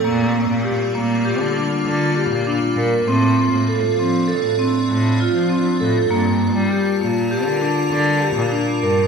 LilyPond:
<<
  \new Staff \with { instrumentName = "Vibraphone" } { \time 5/4 \key g \minor \tempo 4 = 99 bes4 g'8 bes8 g'8 d'4 g'8 d'8 bes'8 | c'4 a'8 c'8 a'8 c'4 f'8 c'8 a'8 | bes4 g'8 bes8 g'8 d'4 g'8 d'8 bes'8 | }
  \new Staff \with { instrumentName = "Ambient pad" } { \time 5/4 \key g \minor << { f'1~ f'4~ | f'1~ f'4 | <g bes'>1~ <g bes'>4 | } \\ { <g bes>1~ <g bes>4 | <c' d'>1~ <c' d'>4 | a''1~ a''4 | } >> }
  \new Staff \with { instrumentName = "Cello" } { \clef bass \time 5/4 \key g \minor bes,8. bes,8 r16 bes,8. d8 r16 d8. bes,8 r16 bes,8 | a,8. a,8 r16 f8. a,8 r16 a,8. f8 r16 a,8 | g,8. g8 r16 bes,8. d8 r16 d8. bes,8 r16 g,8 | }
>>